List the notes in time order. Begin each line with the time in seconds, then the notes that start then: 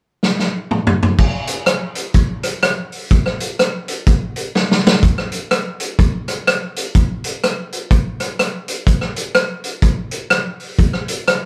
0.23 snare
0.39 snare
0.71 mid tom
0.87 floor tom
1.03 floor tom
1.18 kick, crash
1.47 closed hi-hat
1.66 cross-stick, closed hi-hat
1.95 closed hi-hat
2.14 kick, closed hi-hat
2.43 cross-stick, closed hi-hat
2.63 cross-stick, closed hi-hat
2.92 open hi-hat
3.11 kick, closed hi-hat
3.26 cross-stick
3.40 closed hi-hat
3.59 cross-stick, closed hi-hat
3.88 closed hi-hat
4.07 kick, closed hi-hat
4.36 closed hi-hat
4.55 snare
4.71 snare
4.87 snare
5.03 kick, closed hi-hat
5.18 cross-stick
5.32 closed hi-hat
5.51 cross-stick, closed hi-hat
5.80 closed hi-hat
5.99 kick, closed hi-hat
6.28 cross-stick, closed hi-hat
6.47 cross-stick, closed hi-hat
6.76 closed hi-hat
6.95 kick, closed hi-hat
7.24 closed hi-hat
7.44 cross-stick, closed hi-hat
7.72 closed hi-hat
7.91 kick, closed hi-hat
8.20 cross-stick, closed hi-hat
8.39 cross-stick, closed hi-hat
8.68 closed hi-hat
8.87 kick, closed hi-hat
9.01 cross-stick
9.16 closed hi-hat
9.35 cross-stick, closed hi-hat
9.64 closed hi-hat
9.82 kick, closed hi-hat
10.11 closed hi-hat
10.30 cross-stick, closed hi-hat
10.60 open hi-hat
10.79 kick, closed hi-hat
10.93 cross-stick
11.08 closed hi-hat
11.28 cross-stick, closed hi-hat